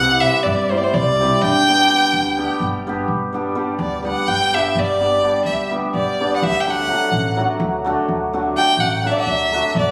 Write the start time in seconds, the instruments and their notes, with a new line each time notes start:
Already playing: upright bass C2, clarinet C4, violin F#5
0.01 hammered dulcimer G3 C4 E4 G4
0.20 hammered dulcimer G3 C4 E4 G4, clarinet C4, violin E5
0.43 upright bass G2, clarinet G3, violin D5
0.70 hammered dulcimer G3 C4 E4 G4, clarinet A3, violin C5
0.78 clarinet B3, violin D5
0.82 clarinet A3, violin C5
0.93 upright bass C2, clarinet G3, violin D5
1.19 hammered dulcimer G3 C4 E4 G4
1.41 upright bass G1, clarinet D4, violin G5
1.68 hammered dulcimer G3 B3 D4 G4
1.89 hammered dulcimer G3 B3 D4 G4
2.13 upright bass D2
2.37 hammered dulcimer G3 B3 D4 G4
2.60 upright bass G1
2.87 hammered dulcimer G3 B3 D4 G4
3.08 upright bass G1
3.33 hammered dulcimer G3 B3 D4 G4
3.55 hammered dulcimer G3 B3 D4 G4
3.79 upright bass D2, violin D5
4.03 hammered dulcimer G3 B3 D4 G4
4.07 violin F#5
4.28 upright bass G1, violin G5
4.53 hammered dulcimer G3 B3 D4 G4, violin E5
4.75 upright bass G1
4.79 violin D5
5.00 hammered dulcimer G3 B3 D4 G4
5.23 hammered dulcimer G3 B3 D4 G4
5.45 upright bass D2, violin E5
5.70 hammered dulcimer G3 B3 D4 G4
5.94 upright bass G1, violin D5
6.20 hammered dulcimer G3 B3 D4 G4
6.36 violin F#5
6.42 upright bass D2, violin E5
6.60 violin G5
6.67 hammered dulcimer F#3 A3 D4 F#4, violin F#5
6.89 hammered dulcimer F#3 A3 D4 F#4
7.12 upright bass A1
7.37 hammered dulcimer F#3 A3 D4 F#4
7.60 upright bass D2
7.84 hammered dulcimer F#3 A3 D4 F#4
8.08 upright bass D2
8.33 hammered dulcimer F#3 A3 D4 F#4
8.56 hammered dulcimer F#3 A3 D4 F#4, violin G5
8.77 upright bass A1, violin F#5
9.04 hammered dulcimer F#3 A3 D4 F#4, violin E5
9.10 violin D5
9.20 violin E5
9.26 upright bass D2
9.52 hammered dulcimer F#3 A3 D4 F#4
9.75 upright bass G1, violin D5